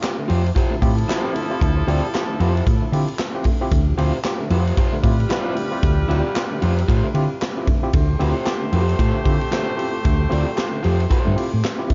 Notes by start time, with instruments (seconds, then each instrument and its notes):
0.01 tine electric piano F4 G4, snare, clap, hi-hat pedal, ride
0.18 tine electric piano D3 A3
0.28 fingered electric bass F2, overdriven electric guitar F4 G4 C5, tine electric piano F4 G4, open hi-hat, ride
0.46 ride
0.54 horn section F3 E4 A4, tine electric piano F4 G4, overdriven electric guitar F4 G4 C5, kick, hi-hat pedal, ride
0.71 tine electric piano D3 A3
0.81 fingered electric bass A2, tine electric piano C4 E4 F4 G4, kick, open hi-hat, ride
0.98 ride
1.08 overdriven electric guitar F4 G4 C5, snare, clap, hi-hat pedal, ride
1.23 tine electric piano C4 E4 F4 G4
1.35 tine electric piano D3 A3, open hi-hat, ride
1.50 tine electric piano C4 E4 F4 G4
1.61 fingered electric bass D2, tine electric piano D3 A3, kick, hi-hat pedal, ride
1.77 tine electric piano F4 G4
1.87 fingered electric bass D2, tine electric piano C4 E4 F4 G4, overdriven electric guitar F4 G4 D5, open hi-hat, ride
2.14 tine electric piano F4 G4, snare, clap, hi-hat pedal, ride
2.30 tine electric piano D3 A3
2.40 fingered electric bass F2, overdriven electric guitar F4 G4 C5, tine electric piano F4 G4, open hi-hat, ride
2.57 ride
2.67 fingered electric bass A2, tine electric piano F4 G4, kick, hi-hat pedal, ride
2.82 tine electric piano D3 A3
2.92 fingered electric bass D3, tine electric piano C4 E4 F4 G4, open hi-hat, ride
3.08 ride
3.18 snare, clap, hi-hat pedal, ride
3.35 tine electric piano C4 E4 F4 G4
3.44 tine electric piano D3 A3, kick, open hi-hat, ride
3.61 tine electric piano C4 E4 F4 G4
3.71 fingered electric bass D2, tine electric piano D3 A3, kick, hi-hat pedal, ride
3.88 tine electric piano F4 G4
3.98 fingered electric bass D2, tine electric piano C4 E4 F4 G4, overdriven electric guitar F4 G4 C5, open hi-hat, ride
4.24 tine electric piano F4 G4, snare, clap, hi-hat pedal, ride
4.40 tine electric piano D3 A3
4.50 fingered electric bass F2, tine electric piano F4 G4, overdriven electric guitar F4 G4 C5, open hi-hat, ride
4.67 ride
4.77 horn section G3 F4 B4, tine electric piano F4 G4, overdriven electric guitar F4 G4 C5, kick, hi-hat pedal, ride
4.93 tine electric piano D3 A3
5.03 fingered electric bass A2, tine electric piano C4 E4 F4 G4, kick, open hi-hat, ride
5.20 ride
5.30 overdriven electric guitar F4 G4 C5, snare, clap, hi-hat pedal, ride
5.45 tine electric piano C4 E4 F4 G4
5.55 tine electric piano D3 A3, open hi-hat, ride
5.71 tine electric piano C4 E4 F4 G4
5.82 fingered electric bass D2, tine electric piano D3 A3, kick, hi-hat pedal, ride
5.99 tine electric piano F4 G4
6.08 fingered electric bass D2, tine electric piano C4 E4 F4 G4, overdriven electric guitar F4 G4 D5, ride
6.35 tine electric piano F4 G4, snare, clap, ride
6.51 tine electric piano D3 A3
6.61 fingered electric bass F2, tine electric piano F4 G4, overdriven electric guitar F4 G4 C5, open hi-hat, ride
6.79 ride
6.88 fingered electric bass A2, tine electric piano F4 G4, overdriven electric guitar F4 G4 C5, kick, hi-hat pedal, ride
7.04 tine electric piano D3 A3
7.14 fingered electric bass D3, tine electric piano C4 E4 F4 G4, ride
7.42 snare, clap, ride
7.57 tine electric piano C4 E4 F4 G4
7.67 tine electric piano D3 A3, kick, ride
7.83 tine electric piano C4 E4 F4 G4
7.93 fingered electric bass D2, tine electric piano D3 A3, horn section A3 G4 C5, kick, ride
8.09 tine electric piano F4 G4
8.19 fingered electric bass D2, tine electric piano C4 E4 F4 G4, overdriven electric guitar F4 G4 C5, open hi-hat, ride
8.45 tine electric piano F4 G4, snare, clap, hi-hat pedal, ride
8.62 tine electric piano D3 A3
8.72 fingered electric bass F2, tine electric piano F4 G4, overdriven electric guitar F4 G4 C5, open hi-hat, ride
8.89 ride
8.99 fingered electric bass A2, tine electric piano F4 G4, overdriven electric guitar F4 G4 C5, kick, hi-hat pedal, ride
9.14 tine electric piano D3 A3
9.24 fingered electric bass D3, tine electric piano C4 E4 F4 G4, kick, open hi-hat, ride
9.41 ride
9.51 tine electric piano D3 A3, overdriven electric guitar F4 G4 C5, snare, clap, hi-hat pedal, ride
9.77 tine electric piano C4 E4 F4 G4, open hi-hat, ride
9.92 tine electric piano F4 G4
10.03 fingered electric bass D2, tine electric piano D3 A3, kick, hi-hat pedal, ride
10.18 tine electric piano F4 G4
10.29 fingered electric bass D2, tine electric piano C4 E4 F4 G4, overdriven electric guitar F4 G4 D5, open hi-hat, ride
10.56 tine electric piano F4 G4, snare, clap, hi-hat pedal, ride
10.71 tine electric piano D3 A3
10.82 fingered electric bass F2, tine electric piano F4 G4, overdriven electric guitar F4 G4 C5, open hi-hat, ride
11.00 ride
11.09 tine electric piano F4 G4, overdriven electric guitar F4 G4 C5, kick, hi-hat pedal, ride
11.25 fingered electric bass G2, tine electric piano D3 A3
11.36 tine electric piano C4 E4 F4 G4, open hi-hat, ride
11.54 fingered electric bass A2
11.64 snare, clap, hi-hat pedal, ride
11.78 tine electric piano C4 E4 F4 G4
11.89 tine electric piano D3 A3, kick, open hi-hat, ride